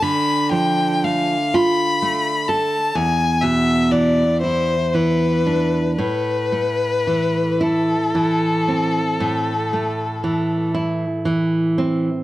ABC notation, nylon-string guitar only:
X:1
M:12/8
L:1/8
Q:3/8=39
K:Am
V:1 name="Nylon-string guitar" clef=bass
D, F, A, F A, A E,, B,, E, E E, D | A,, A, E, E E, C A,, A, E, E E, C |]